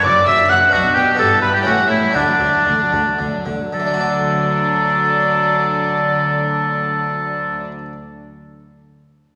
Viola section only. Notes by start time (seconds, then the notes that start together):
0.04 F#4
0.16 D4
0.27 F#4
0.39 D4
0.50 F#4
0.61 D4
0.73 B3
0.84 D4
0.95 B3
1.08 D4
1.19 G4
1.30 E4
1.42 G4
1.54 E4
1.66 A3
1.78 G3
1.91 A3
2.03 G3
2.15 A3
2.28 F#3
2.40 A3
2.53 F#3
2.66 A3
2.79 F#3
2.92 A3
3.06 F#3
3.19 A3
3.32 F#3
3.45 A3
3.60 F#3
3.73 F#3